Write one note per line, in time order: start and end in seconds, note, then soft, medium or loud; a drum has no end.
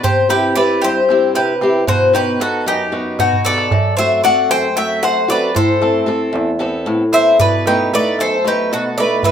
0.03 0.54 C3 medium
0.03 0.28 G4 medium
0.03 0.28 C5 medium
0.03 darbuka dum medium
0.29 0.55 C4 medium
0.29 0.55 E4 soft
0.29 0.54 G4 medium
0.29 0.56 G4 medium
0.29 0.54 B4 medium
0.29 darbuka tek medium
0.56 0.98 C4 soft
0.56 0.98 E4 soft
0.56 0.99 G4 medium
0.56 0.81 B4 medium
0.56 0.80 D5 medium
0.56 darbuka tek medium
0.82 1.34 G2 medium
0.82 1.31 G4 medium
0.82 1.32 C5 medium
0.82 darbuka tek medium
0.97 darbuka tek soft
1.09 1.52 C4 soft
1.09 1.52 E4 soft
1.09 1.52 G4 medium
1.09 darbuka tek medium
1.35 1.87 C3 medium
1.35 1.84 G4 medium
1.35 1.84 B4 medium
1.35 darbuka tek medium
1.61 1.83 C4 soft
1.61 1.83 E4 soft
1.61 1.84 G4 medium
1.61 darbuka tek medium
1.87 2.38 B2 medium
1.87 2.12 F#4 medium
1.87 2.12 C5 medium
1.87 darbuka dum medium
2.01 darbuka tek soft
2.13 2.39 B3 soft
2.13 2.39 D#4 soft
2.13 2.39 F#4 medium
2.13 2.39 G4 medium
2.13 2.42 B4 medium
2.13 darbuka tek medium
2.40 2.82 B3 medium
2.40 2.82 D#4 soft
2.40 2.82 F#4 soft
2.40 2.65 F#4 medium
2.40 2.67 A4 medium
2.40 darbuka tek medium
2.66 3.17 F#2 medium
2.66 3.16 D#4 medium
2.66 3.19 G4 medium
2.66 darbuka tek medium
2.92 3.34 B3 soft
2.92 3.34 D#4 soft
2.92 3.35 F#4 medium
2.92 darbuka tek medium
3.19 3.70 B2 medium
3.19 3.44 D#4 medium
3.19 3.46 F#4 medium
3.19 darbuka tek medium
3.19 darbuka dum medium
3.33 darbuka dum soft
3.45 3.67 B3 soft
3.45 3.67 D#4 soft
3.45 3.67 F#4 medium
3.45 3.94 A4 medium
3.45 3.98 D5 loud
3.45 darbuka tek medium
3.58 darbuka tek medium
3.71 4.23 F#2 medium
3.71 darbuka dum medium
3.97 4.23 A3 medium
3.97 4.23 C4 soft
3.97 4.23 F#4 soft
3.97 4.22 C5 medium
3.97 4.23 E5 loud
3.97 darbuka tek medium
4.24 4.66 A3 medium
4.24 4.66 C4 soft
4.24 4.66 F#4 medium
4.24 4.48 D5 medium
4.24 4.49 F#5 loud
4.24 darbuka tek medium
4.49 5.02 F#2 medium
4.49 4.75 C5 medium
4.49 4.75 G5 loud
4.49 darbuka tek medium
4.63 darbuka tek soft
4.76 5.19 A3 soft
4.76 5.19 C4 soft
4.76 5.19 F#4 soft
4.76 5.02 E5 medium
4.76 5.02 G5 medium
4.76 darbuka tek medium
5.03 5.54 F#2 medium
5.03 5.28 C5 medium
5.03 5.27 F#5 medium
5.03 darbuka tek medium
5.28 5.50 A3 soft
5.28 5.50 C4 soft
5.28 5.50 F#4 medium
5.28 5.55 B4 medium
5.28 5.54 D5 medium
5.28 darbuka tek medium
5.55 6.06 A2 medium
5.55 6.57 A4 medium
5.55 6.57 C5 medium
5.55 darbuka dum medium
5.81 6.05 A3 soft
5.81 6.06 C4 soft
5.81 6.07 A4 medium
5.81 darbuka tek medium
6.06 6.49 A3 medium
6.06 6.49 C4 soft
6.06 6.50 A4 medium
6.06 darbuka tek medium
6.33 6.85 E2 medium
6.33 darbuka tek medium
6.48 darbuka tek soft
6.59 7.02 B3 soft
6.59 7.03 C4 soft
6.59 7.02 A4 medium
6.59 darbuka tek medium
6.86 7.38 A2 medium
6.86 darbuka tek medium
7.13 7.35 B3 soft
7.13 7.35 C4 soft
7.13 7.35 A4 soft
7.13 7.38 C5 medium
7.13 7.38 E5 loud
7.13 darbuka tek medium
7.39 7.91 B2 medium
7.39 7.65 B4 medium
7.39 7.64 D5 medium
7.39 darbuka dum medium
7.66 7.93 A3 soft
7.66 7.93 B3 soft
7.66 7.93 D#4 medium
7.66 7.91 G4 medium
7.66 7.91 B4 medium
7.66 darbuka tek medium
7.93 8.35 A3 soft
7.93 8.36 B3 soft
7.93 8.36 D#4 medium
7.93 8.18 B4 medium
7.93 8.21 D5 loud
7.93 darbuka tek medium
8.19 8.71 F#2 medium
8.19 8.44 A4 medium
8.19 8.47 C5 loud
8.19 darbuka tek medium
8.45 8.87 A3 soft
8.45 8.88 B3 soft
8.45 8.88 D#4 medium
8.45 8.71 G4 medium
8.45 8.73 B4 medium
8.45 darbuka tek medium
8.72 9.23 B2 medium
8.72 8.97 F#4 medium
8.72 8.99 A4 medium
8.72 darbuka tek medium
8.98 9.19 A3 soft
8.98 9.20 B3 soft
8.98 9.20 D#4 soft
8.98 9.23 B4 medium
8.98 9.22 D5 medium
8.98 darbuka tek medium
9.23 9.31 E3 medium
9.23 9.31 B4 medium
9.23 9.31 E5 medium
9.23 darbuka dum medium